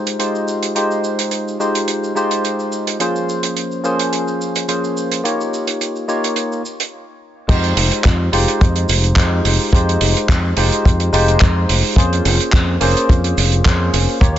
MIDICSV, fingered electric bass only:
0, 0, Header, 1, 3, 480
1, 0, Start_track
1, 0, Key_signature, -4, "minor"
1, 0, Tempo, 560748
1, 650, Time_signature, 4, 2, 24, 8
1, 12314, End_track
2, 0, Start_track
2, 0, Title_t, "Fingered electric bass"
2, 0, Program_c, 0, 33
2, 6411, Note_on_c, 0, 41, 99
2, 6605, Note_off_c, 0, 41, 0
2, 6648, Note_on_c, 0, 29, 107
2, 6750, Note_off_c, 0, 29, 0
2, 6893, Note_on_c, 0, 41, 92
2, 7086, Note_off_c, 0, 41, 0
2, 7129, Note_on_c, 0, 29, 82
2, 7231, Note_off_c, 0, 29, 0
2, 7371, Note_on_c, 0, 41, 83
2, 7565, Note_off_c, 0, 41, 0
2, 7609, Note_on_c, 0, 29, 96
2, 7804, Note_off_c, 0, 29, 0
2, 7842, Note_on_c, 0, 41, 96
2, 8040, Note_off_c, 0, 41, 0
2, 8088, Note_on_c, 0, 29, 92
2, 8190, Note_off_c, 0, 29, 0
2, 8326, Note_on_c, 0, 41, 104
2, 8522, Note_off_c, 0, 41, 0
2, 8569, Note_on_c, 0, 29, 105
2, 8671, Note_off_c, 0, 29, 0
2, 8806, Note_on_c, 0, 41, 93
2, 9002, Note_off_c, 0, 41, 0
2, 9048, Note_on_c, 0, 29, 84
2, 9150, Note_off_c, 0, 29, 0
2, 9291, Note_on_c, 0, 41, 81
2, 9485, Note_off_c, 0, 41, 0
2, 9527, Note_on_c, 0, 29, 96
2, 9723, Note_off_c, 0, 29, 0
2, 9770, Note_on_c, 0, 41, 98
2, 9965, Note_off_c, 0, 41, 0
2, 10008, Note_on_c, 0, 29, 91
2, 10110, Note_off_c, 0, 29, 0
2, 10240, Note_on_c, 0, 41, 102
2, 10439, Note_off_c, 0, 41, 0
2, 10488, Note_on_c, 0, 29, 108
2, 10590, Note_off_c, 0, 29, 0
2, 10727, Note_on_c, 0, 41, 90
2, 10923, Note_off_c, 0, 41, 0
2, 10967, Note_on_c, 0, 29, 84
2, 11070, Note_off_c, 0, 29, 0
2, 11207, Note_on_c, 0, 41, 77
2, 11403, Note_off_c, 0, 41, 0
2, 11448, Note_on_c, 0, 29, 96
2, 11643, Note_off_c, 0, 29, 0
2, 11688, Note_on_c, 0, 41, 98
2, 11884, Note_off_c, 0, 41, 0
2, 11927, Note_on_c, 0, 29, 94
2, 12030, Note_off_c, 0, 29, 0
2, 12164, Note_on_c, 0, 39, 99
2, 12314, Note_off_c, 0, 39, 0
2, 12314, End_track
3, 0, Start_track
3, 0, Title_t, "Muted fingered electric bass strokes"
3, 6775, Note_on_c, 9, 29, 42
3, 6861, Note_off_c, 9, 29, 0
3, 10617, Note_on_c, 9, 29, 43
3, 10702, Note_off_c, 9, 29, 0
3, 12314, End_track
0, 0, End_of_file